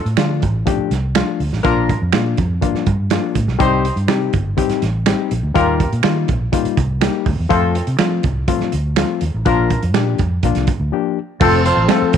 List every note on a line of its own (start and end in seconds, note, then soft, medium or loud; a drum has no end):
0.05 0.15 A2 medium
0.05 closed hi-hat soft
0.17 0.44 D3 loud
0.17 0.43 F3 medium
0.17 0.43 A3 medium
0.17 0.44 D4 medium
0.17 0.44 F4 medium
0.17 finger snap medium
0.17 snare medium
0.17 closed hi-hat medium
0.42 0.62 A1 medium
0.42 kick medium
0.42 closed hi-hat medium
0.66 0.92 F3 medium
0.66 0.92 A3 medium
0.66 0.92 D4 medium
0.66 0.93 G4 medium
0.66 kick medium
0.66 closed hi-hat medium
0.78 muted fingered electric bass stroke soft
0.91 1.20 C2 medium
0.91 snare soft
0.91 closed hi-hat medium
1.15 1.41 F3 medium
1.15 1.41 A3 medium
1.15 1.41 D4 medium
1.15 1.42 F4 medium
1.15 finger snap medium
1.15 snare loud
1.15 closed hi-hat medium
1.40 1.50 D2 medium
1.40 open hi-hat medium
1.53 1.62 A1 medium
1.53 snare soft
1.63 1.94 A#1 medium
1.63 1.90 F3 loud
1.63 1.90 A#3 medium
1.63 1.99 D4 medium
1.63 1.90 D4 medium
1.63 1.99 F4 medium
1.63 1.90 F4 loud
1.63 1.99 A#4 medium
1.63 kick loud
1.63 closed hi-hat medium
1.89 kick medium
1.89 closed hi-hat medium
2.02 2.11 F2 medium
2.12 2.34 A#2 medium
2.12 2.38 F3 medium
2.12 2.39 A#3 medium
2.12 2.39 D4 medium
2.12 2.39 F4 medium
2.12 finger snap medium
2.12 snare loud
2.12 closed hi-hat medium
2.37 2.58 F2 medium
2.37 kick medium
2.37 closed hi-hat medium
2.61 2.87 F3 medium
2.61 2.87 A#3 medium
2.61 2.88 D4 medium
2.61 2.88 F4 medium
2.61 kick medium
2.61 closed hi-hat medium
2.74 muted fingered electric bass stroke soft
2.74 snare soft
2.86 3.16 G2 medium
2.86 kick medium
2.86 closed hi-hat medium
3.10 3.37 F3 medium
3.10 3.37 A#3 medium
3.10 3.37 D4 medium
3.10 3.37 F4 medium
3.10 finger snap medium
3.10 snare medium
3.10 closed hi-hat medium
3.35 3.45 A2 medium
3.35 kick medium
3.35 closed hi-hat medium
3.47 3.57 B1 medium
3.47 snare soft
3.59 3.90 C2 medium
3.59 3.85 G3 medium
3.59 3.85 C4 medium
3.59 3.85 D#4 medium
3.59 3.95 D#4 medium
3.59 3.85 G4 loud
3.59 3.95 G4 medium
3.59 3.95 C5 loud
3.59 kick loud
3.59 closed hi-hat medium
3.85 closed hi-hat medium
3.96 4.08 G2 medium
3.96 closed hi-hat soft
4.08 4.28 C3 loud
4.08 4.34 G3 medium
4.08 4.34 C4 medium
4.08 4.34 D#4 medium
4.08 4.34 G4 medium
4.08 finger snap medium
4.08 snare loud
4.08 closed hi-hat medium
4.33 4.53 G1 medium
4.33 kick medium
4.33 closed hi-hat medium
4.57 4.83 G3 medium
4.57 4.83 C4 medium
4.57 4.83 D#4 medium
4.57 4.83 G4 medium
4.57 kick medium
4.57 closed hi-hat medium
4.69 muted fingered electric bass stroke soft
4.69 snare soft
4.69 closed hi-hat soft
4.82 5.12 A1 medium
4.82 snare soft
4.82 closed hi-hat medium
5.06 5.32 G3 medium
5.06 5.32 C4 medium
5.06 5.32 D#4 medium
5.06 5.32 G4 medium
5.06 finger snap medium
5.06 snare loud
5.06 closed hi-hat medium
5.31 5.41 A#1 medium
5.31 closed hi-hat medium
5.43 5.53 D2 medium
5.54 5.85 D#2 medium
5.54 5.80 G3 medium
5.54 5.81 A#3 loud
5.54 5.81 D#4 medium
5.54 5.90 F4 medium
5.54 5.81 F4 loud
5.54 5.90 G4 medium
5.54 5.90 A#4 medium
5.54 kick loud
5.54 closed hi-hat medium
5.80 kick medium
5.80 closed hi-hat medium
5.92 6.02 A#2 medium
5.92 closed hi-hat soft
6.03 6.24 D#3 loud
6.03 6.29 G3 medium
6.03 6.29 A#3 medium
6.03 6.29 D#4 medium
6.03 6.30 F4 medium
6.03 finger snap medium
6.03 snare loud
6.03 closed hi-hat medium
6.28 6.48 A#1 medium
6.28 kick medium
6.28 closed hi-hat medium
6.52 6.78 G3 medium
6.52 6.78 A#3 medium
6.52 6.78 D#4 medium
6.52 6.79 F4 medium
6.52 kick medium
6.52 closed hi-hat medium
6.65 muted fingered electric bass stroke soft
6.65 closed hi-hat soft
6.77 7.07 C2 medium
6.77 kick medium
6.77 closed hi-hat medium
7.01 7.27 G3 medium
7.01 7.27 A#3 medium
7.01 7.27 D#4 medium
7.01 7.27 G4 medium
7.01 finger snap medium
7.01 snare loud
7.01 closed hi-hat medium
7.26 7.36 D2 medium
7.26 kick medium
7.26 open hi-hat medium
7.39 7.49 E2 medium
7.49 7.80 F2 medium
7.49 7.75 F3 loud
7.49 7.76 A3 loud
7.49 7.76 C4 medium
7.49 7.85 C4 medium
7.49 7.76 F4 loud
7.49 7.85 F4 medium
7.49 7.85 A4 medium
7.49 kick loud
7.49 closed hi-hat medium
7.75 closed hi-hat medium
7.87 7.97 C3 medium
7.87 closed hi-hat soft
7.98 8.24 F3 medium
7.98 8.19 F3 loud
7.98 8.25 A3 medium
7.98 8.25 C4 medium
7.98 8.25 F4 medium
7.98 finger snap medium
7.98 snare medium
7.98 closed hi-hat medium
8.23 8.44 C2 medium
8.23 kick medium
8.23 closed hi-hat medium
8.48 8.73 F3 medium
8.48 8.74 A3 medium
8.48 8.74 C4 medium
8.48 8.74 F4 medium
8.48 kick medium
8.48 closed hi-hat medium
8.60 muted fingered electric bass stroke soft
8.60 snare soft
8.72 9.02 D2 medium
8.72 closed hi-hat medium
8.96 9.22 F3 medium
8.96 9.23 A3 medium
8.96 9.23 C4 medium
8.96 9.23 F4 medium
8.96 finger snap medium
8.96 snare loud
8.96 closed hi-hat medium
9.21 9.31 D#2 medium
9.21 closed hi-hat medium
9.34 9.44 A1 medium
9.46 9.75 A#1 medium
9.46 9.71 F3 loud
9.46 9.71 A#3 medium
9.46 9.80 D4 medium
9.46 9.71 D4 medium
9.46 9.81 F4 medium
9.46 9.72 F4 loud
9.46 9.81 A#4 medium
9.46 kick loud
9.46 closed hi-hat medium
9.70 kick medium
9.70 closed hi-hat medium
9.83 9.95 F2 medium
9.83 closed hi-hat medium
9.94 10.14 A#2 medium
9.94 10.20 F3 medium
9.94 10.20 A#3 medium
9.94 10.20 D4 medium
9.94 10.20 G4 medium
9.94 finger snap medium
9.94 snare medium
9.94 closed hi-hat medium
10.18 10.39 F2 medium
10.18 kick medium
10.18 closed hi-hat medium
10.43 10.53 A#1 medium
10.43 10.69 F3 medium
10.43 10.69 A#3 medium
10.43 10.69 D4 medium
10.43 10.70 F4 medium
10.43 kick medium
10.43 closed hi-hat medium
10.55 10.65 C2 medium
10.55 snare soft
10.55 closed hi-hat soft
10.67 kick medium
10.67 closed hi-hat medium
10.80 10.89 D2 medium
10.92 11.18 F3 medium
10.92 11.18 A#3 medium
10.92 11.18 D4 medium
10.92 11.18 G4 medium
11.40 11.70 F1 medium
11.40 12.18 F3 medium
11.40 11.66 F3 medium
11.40 11.66 A3 medium
11.40 12.18 C4 medium
11.40 11.66 C4 medium
11.40 11.61 C4 loud
11.40 11.66 F4 medium
11.40 11.61 F4 loud
11.40 12.18 A4 medium
11.40 11.61 A4 loud
11.40 11.67 A4 medium
11.40 kick loud
11.40 crash medium
11.65 11.84 F4 medium
11.65 11.85 A4 medium
11.65 11.84 C5 medium
11.65 closed hi-hat medium
11.77 11.87 A1 medium
11.89 12.15 F3 medium
11.89 12.15 A3 medium
11.89 12.15 C4 medium
11.89 12.09 C4 medium
11.89 12.15 F4 medium
11.89 12.09 F4 medium
11.89 12.09 A4 medium
11.89 12.15 A4 medium
11.89 finger snap medium
11.89 snare loud
11.89 closed hi-hat medium
12.02 muted fingered electric bass stroke medium
12.13 12.18 F1 medium
12.13 12.18 C4 medium
12.13 12.18 D#4 medium
12.13 kick medium
12.13 closed hi-hat medium